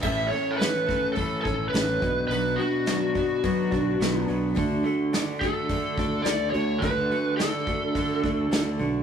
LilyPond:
<<
  \new Staff \with { instrumentName = "Lead electric guitar" } { \time 4/4 \key d \major \tempo 4 = 106 e''8 cis''16. a'32 b'4 a'8 a'8 b'4 | b'8 fis'2. r8 | r4. a'4. d''8 cis''8 | b'4 a'2~ a'8 r8 | }
  \new Staff \with { instrumentName = "Twelve-string acoustic guitar" } { \time 4/4 \key d \major <a, e a cis' a'>8 <a cis' a'>8 <e a cis' a'>8 <a cis' a'>8 <a, e a cis' a'>8 <a cis' a'>8 <e a cis' a'>8 <b d' fis'>8 | <b, fis b d' fis'>8 <b d' fis'>8 <fis b d' fis'>8 <b d' fis'>8 <b, fis b d' fis'>8 <b d' fis'>8 <fis b d' fis'>8 <b d' fis'>8 | <d a d' fis'>8 <a d' fis'>8 <d a d' fis'>8 <a d' fis'>8 <d a d' fis'>8 <a d' fis'>8 <d a d' fis'>8 <a d' fis'>8 | <d a d' fis'>8 <a d' fis'>8 <d a d' fis'>8 <a d' fis'>8 <d a d' fis'>8 <a d' fis'>8 <d a d' fis'>8 <a d' fis'>8 | }
  \new Staff \with { instrumentName = "Clean electric guitar" } { \time 4/4 \key d \major a,8 a8 cis'8 a8 e8 cis'8 a8 b,8 | b,8 b8 d'8 b8 fis8 d'8 b8 fis8 | d8 a8 d'8 a8 d8 d'8 a8 d8 | d8 a8 d'8 a8 d8 d'8 a8 d8 | }
  \new Staff \with { instrumentName = "Fingered electric bass" } { \clef bass \time 4/4 \key d \major a,,8 r2 a,,8 a,,8 b,,8 | b,,8 r2 b,,8 b,,8 b,,8 | d,8 r2 d,8 d,8 d,8 | d,8 r2 d,8 d,8 b,,8 | }
  \new DrumStaff \with { instrumentName = "Drums" } \drummode { \time 4/4 <cymc bd>8 hho8 <hho sn>8 <hho bd>8 <hho bd>8 <hho bd>8 <hho sn>8 <hho bd>8 | hho8 hho8 <hho sn>8 <hho bd>8 <hho bd>8 <hho bd>8 <hho sn>8 hho8 | <hho bd>8 hho8 <hho sn>8 <hho bd>8 <hho bd>8 <hho bd>8 <hho sn>8 hho8 | <hho bd>8 hho8 <hho sn>8 <hho bd>8 <hho bd>8 <hho bd>8 <hho sn>8 hho8 | }
>>